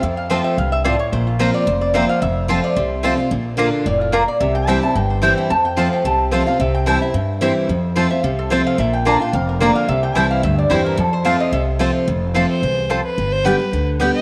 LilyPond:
<<
  \new Staff \with { instrumentName = "Resonator guitar played with a steel bar" } { \time 4/4 \key f \major \tempo 4 = 219 e''8 f''8 g''8 e''8 f''8 e''8 d''8 des''8 | c''8 f'8 bes'8 d''8 c''8 d''8 e''8 f''8 | e''4. d''8 c''4. r8 | r2 d''8 f'8 bes'8 d''8 |
e''8 g''8 bes''8 a''8 g''8 c''8 e''8 g''8 | a''8 g''8 f''8 g''8 a''4. f''8 | e''8 g''8 a''8 e''2~ e''8 | r4. e''8 f''8 a'8 c''8 f''8 |
e''8 g''8 a''8 g''8 f''8 bes'8 d''8 f''8 | e''8 g''8 a''8 f''8 e''8 d''8 c''8 bes'8 | a'8 c''8 f''8 ees''8 e''8 r4. | r1 |
r1 | }
  \new Staff \with { instrumentName = "Fiddle" } { \time 4/4 \key f \major r1 | r1 | r1 | r1 |
r1 | r1 | r1 | r1 |
r1 | r1 | r1 | r4. c''4. a'8 b'8~ |
b'8 c''8 b'4. r4 e''8 | }
  \new Staff \with { instrumentName = "Mandolin" } { \time 4/4 \key f \major r4 <c' f' c'' a''>8 r4. <c' f' c'' a''>8 r8 | r4 <c' f' c'' bes''>8 r4. <c' f' c'' bes''>8 r8 | r4 <c' f' c'' a''>8 r4. <c' f' c'' a''>8 r8 | r4 <bes f' d'' bes''>8 r4. <bes f' d'' bes''>8 r8 |
r4 <c' e' c'' g''>8 r4. <c' e' c'' g''>8 r8 | r4 <c' f' c'' a''>8 r4. <c' f' c'' a''>8 r8 | r4 <c' e' c'' g''>8 r4. <c' e' c'' g''>8 r8 | r4 <c' f' c'' a''>8 r4. <c' f' c'' a''>8 r8 |
r4 <bes f' d'' bes''>8 r4. <bes f' d'' bes''>8 r8 | r4 <c' e' c'' g''>8 r4. <c' e' c'' g''>8 r8 | r4 <c' f' c'' a''>8 r4. <c' f' c'' a''>8 r8 | r4 <c' f' c'' a''>8 r4. <c' f' c'' a''>8 r8 |
r4 <b g' d'' g''>8 r4. <b g' d'' g''>8 r8 | }
  \new Staff \with { instrumentName = "Steel-string acoustic guitar" } { \time 4/4 \key f \major << { r4 <f a c' f'>4 r2 | r4 <f bes c' f'>4 r4 <f bes c' f'>4 | r4 <f a c' f'>4 r4 <f a c' f'>8 <c' f'>8 | r4 <d bes d' f'>4 r2 |
r4 <e g c' e'>8 <c' e'>8 r4 <e g c' e'>4 | r4 <f a c' f'>4 r4 <f a c' f'>8 <c' f'>8 | r4 <e g c' e'>8 <c' e'>8 r4 <e g c' e'>4 | r4 <f a c' f'>8 <c' f'>8 r4 <f a c' f'>4 |
r4 <d bes d' f'>8 <d' f'>8 r4 <d bes d' f'>4 | r4 <e g c' e'>4 r4 <e g c' e'>4 | r4 <f a c' f'>4 r4 <f a c' f'>4 | r4 <f a c' f'>4 r2 |
r4 <d g b g'>8 <b g'>8 r4 <d g b g'>4 | } \\ { f,2 g,4 a,4 | bes,2 f,2 | f,2 c2 | bes,2 a,4 bes,4 |
c2 g,2 | f,2 c2 | c2 g,2 | f,2 c2 |
bes,2 f,2 | c2 g,2 | f,2 c2 | f,2 e,4 f,4 |
g,2 d2 | } >> }
  \new Staff \with { instrumentName = "Upright bass" } { \clef bass \time 4/4 \key f \major f,2 c,2 | bes,,2 f,,2 | f,,2 c,2 | bes,,2 f,,2 |
c,2 g,,2 | f,2 c,2 | c,2 g,2 | f,2 c,2 |
bes,,2 f,,2 | c,4 c,4 d,4 e,4 | f,2 c,2 | f,,2 c,2 |
g,,2 d,2 | }
>>